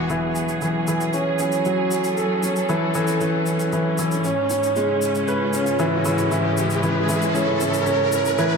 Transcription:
Already playing: E3 B3 D4 F#4 G#4, swell
0.10 E3 F#3, riser, shaker
0.36 shaker
0.44 C#4
0.49 shaker
0.61 E3, shaker
0.88 E3, shaker
1.01 shaker
1.13 C#4, shaker
1.39 C#4, shaker
1.52 shaker
1.65 F#3, shaker
1.91 shaker
1.97 A4
2.04 shaker
2.17 A4, shaker
2.43 C#4, shaker
2.56 shaker
2.69 E3, shaker
2.94 E3, shaker
3.08 shaker
3.21 E3, shaker
3.46 shaker
3.60 shaker
3.73 E3, shaker
3.98 E3, shaker
4.12 shaker
4.24 G#2 C#4, shaker
4.50 C#4, shaker
4.63 shaker
4.68 C#3
4.76 G#3, shaker
5.02 shaker
5.15 shaker
5.28 B4, shaker
5.44 G#3
5.53 C#4, shaker
5.66 shaker
5.79 E3, shaker
6.05 E3, shaker
6.10 E4
6.18 shaker
6.31 E3, shaker
6.58 shaker
6.70 shaker
6.83 E3, shaker
7.09 E3, shaker
7.22 shaker
7.35 C#4, shaker
7.61 C#4, shaker
7.74 shaker
7.87 C#4, shaker
8.12 shaker
8.25 shaker
8.37 A2 E3, shaker
8.48 E3

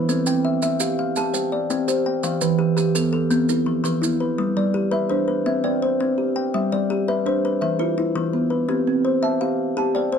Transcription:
Already playing: E4 B4
0.09 C4 A4, maracas
0.26 C4 G5, maracas
0.45 E5
0.62 E5, maracas
0.80 G4 F5, maracas
0.99 F5
1.16 G4 A5, maracas
1.33 C5 G5, maracas
1.52 D5
1.70 C4 G5, maracas
1.88 G4 C5, maracas
2.06 G5
2.23 E3 F5, maracas
2.41 E3 B4, maracas
2.59 G4
2.77 G4, maracas
2.95 B3 A4, maracas
3.13 A4
3.30 B3 C4, maracas
3.49 E4 B4, maracas
3.66 F3
3.84 E3 B4, maracas
4.02 B3 E4, maracas
4.20 B4
4.38 G3
4.57 G3 D5
4.74 G4
4.91 B4 E5
5.09 D4 C5
5.28 B4
5.46 C4 E5
5.64 C4 D5 G5
5.82 C5
6.00 C4
6.18 G4
6.36 G5
6.54 G3 E5
6.72 G3 D5
6.90 G4
7.08 B4 E5
7.26 D4 C5
7.45 B4
7.61 E3 E5
7.79 E4 F4 B4
7.98 E4
8.16 E3
8.33 B3
8.50 B4
8.69 C4 G4
8.87 C4
9.05 C5
9.23 E5 A5
9.41 G4 F5
9.77 G4 A5
9.95 C5 D5 G5
10.12 C5

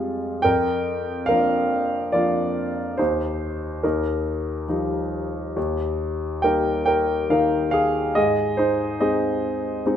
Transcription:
Already playing: F2 G3 G#3 F4
0.42 F2 A#4 G5
1.26 F3 A#3 D4 A#4 F5
2.12 F3 A#3 D4 F4 D5
2.98 D#2 D#4 C5
3.83 D#2 D#4 A#4
4.68 F3 G3 D#4
5.56 D#2
6.42 G3 A#3 D#4 A#4 G5
6.86 A#4 G5
7.30 D#3 A#3 D#4 A#4 F5
7.71 G#4 F5
8.15 G#2 G#4 D#5
8.57 D#4 C5
9.00 G#3 C4 D#4 G#4 D#5
9.86 G#3 C4 D#4

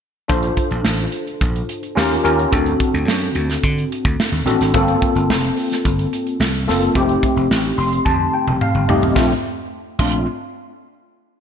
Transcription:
0.28 A#1 D4 F4 A4 C5, kick, closed hi-hat
0.43 closed hi-hat
0.57 kick, closed hi-hat
0.71 A#1, closed hi-hat
0.85 A1, snare
0.99 closed hi-hat
1.12 closed hi-hat
1.27 closed hi-hat
1.41 A#1, kick, closed hi-hat
1.56 closed hi-hat
1.69 closed hi-hat
1.83 closed hi-hat
1.95 D#2 C#4 F4 G4 A#4, snare
2.12 closed hi-hat
2.24 D#2 C#4 F4 G4 A#4, closed hi-hat
2.39 closed hi-hat
2.51 D2 C4 D4 F#4 A4, kick, closed hi-hat
2.66 closed hi-hat
2.80 kick, closed hi-hat
2.94 D2, closed hi-hat
3.08 F#2, snare
3.22 closed hi-hat
3.35 D2, closed hi-hat
3.50 snare, closed hi-hat
3.64 D3, kick, closed hi-hat
3.78 closed hi-hat
3.92 closed hi-hat
4.05 D2, kick, closed hi-hat
4.20 snare
4.32 D#2, closed hi-hat
4.46 A1 C4 D4 F#4 A4, closed hi-hat
4.60 G#1, snare, closed hi-hat
4.74 G1 A#3 C4 F4 A4, kick, closed hi-hat
4.88 closed hi-hat
5.02 kick, closed hi-hat
5.15 G1, closed hi-hat
5.29 F1, snare
5.44 closed hi-hat
5.57 open hi-hat
5.72 snare, closed hi-hat
5.85 G1, kick, closed hi-hat
5.99 closed hi-hat
6.13 closed hi-hat
6.27 closed hi-hat
6.40 C2, snare
6.55 closed hi-hat
6.67 F#1 A#3 C4 F4 A4, snare, open hi-hat
6.82 closed hi-hat
6.94 F1 A3 C4 D#4 G4, kick, closed hi-hat
7.09 closed hi-hat
7.23 kick, closed hi-hat
7.36 F1, closed hi-hat
7.51 A1, snare
7.65 closed hi-hat
7.78 F1 C6, open hi-hat
7.93 closed hi-hat
8.05 F2 A5, kick, high tom
8.34 G5
8.47 F1, mid tom
8.61 F5, mid tom
8.75 G1, mid tom
8.88 C2 A3 C4 D#4 G4 D#5, floor tom
9.02 B1, floor tom
9.15 A#1 A3 C4 D4 F4, kick, snare
9.99 A#1 A3 C4 D4 F4, kick, crash

